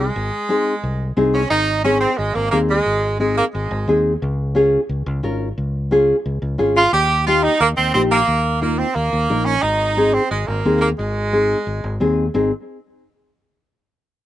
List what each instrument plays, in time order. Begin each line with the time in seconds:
0.01 saxophone section G#3
0.16 fingered electric bass G#1
0.49 nylon-string guitar C4 D#4 G#4
0.83 fingered electric bass C2
1.17 fingered electric bass C2, nylon-string guitar C4 D#4 G#4
1.34 saxophone section C#4
1.51 fingered electric bass G#1, saxophone section D#4
1.84 nylon-string guitar C4 D#4 G#4, saxophone section C#4
2.01 saxophone section C4
2.18 fingered electric bass G#1, saxophone section G#3
2.35 fingered electric bass G#1, saxophone section A#3
2.52 fingered electric bass D#2, saxophone section A#3, nylon-string guitar C4 D#4 G#4
2.69 saxophone section G#3
2.86 fingered electric bass G#1
3.19 saxophone section G#3, nylon-string guitar C4 D#4 G#4
3.38 saxophone section A#3
3.54 fingered electric bass G#1, saxophone section G#3
3.71 fingered electric bass G#1
3.88 fingered electric bass D#2, nylon-string guitar C4 D#4 G#4
4.22 fingered electric bass C#2
4.55 nylon-string guitar C#4 F4 G#4
4.89 fingered electric bass C#2
5.06 fingered electric bass C#2
5.23 fingered electric bass G#1, nylon-string guitar C#4 F4 A#4
5.58 fingered electric bass C#2
5.91 nylon-string guitar C#4 F4 G#4
6.26 fingered electric bass C#2
6.42 fingered electric bass C#2
6.58 fingered electric bass G#1, nylon-string guitar C#4 F4 G#4
6.76 saxophone section F4
6.93 fingered electric bass D#2, saxophone section G4
7.27 nylon-string guitar A#3 D#4 G4, saxophone section F4
7.44 saxophone section D#4
7.60 fingered electric bass D#2, saxophone section A#3
7.77 fingered electric bass D#2, saxophone section C4
7.94 fingered electric bass A#1, nylon-string guitar A#3 D#4 G4, saxophone section C4
8.11 saxophone section A#3
8.28 fingered electric bass D#2
8.61 nylon-string guitar A#3 D#4 F4, saxophone section A#3
8.79 saxophone section C4
8.95 fingered electric bass D#2, saxophone section A#3
9.13 fingered electric bass D#2
9.29 fingered electric bass A#1, nylon-string guitar A#3 D#4 A#4
9.45 saxophone section C#4
9.62 fingered electric bass G#1, saxophone section D#4
9.97 nylon-string guitar C4 D#4 G#4
10.14 saxophone section C4
10.31 fingered electric bass G#1, saxophone section G#3
10.48 fingered electric bass G#1, saxophone section A#3
10.65 fingered electric bass D#2, nylon-string guitar C4 D#4 G#4
10.81 saxophone section A#3
10.99 fingered electric bass G#1, saxophone section G#3
11.33 nylon-string guitar C4 D#4 G#4
11.67 fingered electric bass G#1
11.84 fingered electric bass G#1
12.00 fingered electric bass D#2, nylon-string guitar C4 D#4 G#4
12.34 fingered electric bass G#1, nylon-string guitar C4 D#4 G#4